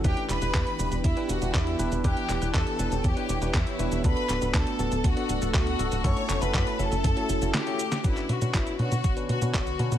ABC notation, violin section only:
X:1
M:4/4
L:1/16
Q:1/4=120
K:Edor
V:1 name="Violin section"
[Gg]2 [Bb]6 [Ee]2 [Ff]2 [Ee]3 z | [Gg]4 [Aa]4 [Gg]4 [Ee]4 | [Bb]4 [Aa]4 [Ff]4 [Ff]4 | [cc']3 [Bb]3 [Aa]6 G4 |
[K:Bm] E2 F2 E2 F4 F2 F4 |]